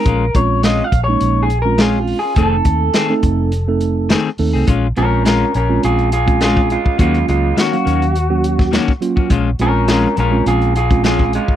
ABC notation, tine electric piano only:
X:1
M:4/4
L:1/16
Q:"Swing 16ths" 1/4=104
K:Bbm
V:1 name="Tine electric piano"
z2 [A,CDF]4 z [A,B,DE]3 z [A,CDF]4 z | [=A,CE=A]4 z [A,CEA]3 z [A,CEA]4 z [A,CEA]2 | z2 [A,CDF]4 z [A,CDF]3 z [A,CDF]4 z | [G,B,DF]4 z [G,B,Df]3 z [G,B,DG]4 z [G,B,DF]2 |
z2 [A,CDF]4 z [A,CDF]3 z [A,CDF]4 z |]